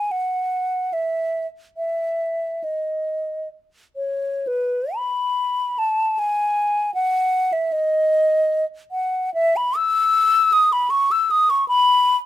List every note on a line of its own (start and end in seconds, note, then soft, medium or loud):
0.00 0.13 G#5 medium
0.11 0.95 F#5 medium
0.93 1.47 E5 medium
1.77 2.65 E5 soft
2.64 3.48 D#5 soft
3.96 4.49 C#5 soft
4.47 4.97 B4 medium
4.96 5.80 B5 medium
5.79 6.21 A5 medium
6.19 6.94 G#5 medium
6.94 7.54 F#5 medium
7.53 7.74 E5 medium
7.72 8.65 D#5 medium
8.91 9.34 F#5 medium
9.34 9.58 E5 medium
9.56 9.78 B5 medium
9.77 10.54 E6 medium
10.53 10.74 D#6 medium
10.73 10.92 B5 medium
10.90 11.13 C#6 medium
11.12 11.32 E6 medium
11.31 11.52 D#6 medium
11.50 11.68 C#6 medium
11.68 12.17 B5 loud